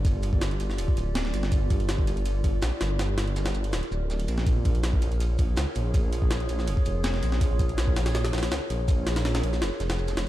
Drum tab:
RD |x---x---x-x-x---x---x---x---x---|x---x-x-x---x-x-x---x---x---x---|x---x-x-x-x-x-x-x-x-----x-x-x---|x---x-x-x---x-x-x---x---x---x---|
HH |--------------------------------|------x-------x-----------------|--------------------------------|------x-------x-----------------|
SH |x---x---x---x---x---x---x---x---|x---x---x---x---x---x---x---x---|x---x---x---x---x---x---x---x---|x---x---x---x---x---x---x---x---|
SD |--------o-o---o---------o-o---o-|--------o---------------o---o---|o---o---o-o-----o-o-----o-----o-|--------o---------------o-------|
BD |o-----o-----------o-------------|o---o-----o---------o-----------|--------------------------------|o---o-----o---------o-----------|

RD |x---x---x-x-x---x---x---x---x---|x---x-x-x---x-x-x-x-xxx-x---x---|x---x-x-x-x-x---x---x-x---x-x---|
HH |--------------------------------|------x-------------------------|--------------------------------|
SH |x---x---x---x---x---x---x---x---|x---x---x---x---x---x---x---x---|x---x---x-x---x-x---x---x-x-----|
SD |--------o-o---o---------o-o---o-|--------o---o-o-o-o-ooo-o-------|----o-o-o-o-o-o-o-o-o-o---o-o---|
BD |o-----o-----------o-------------|o---o-----o---------------------|o-------------------------------|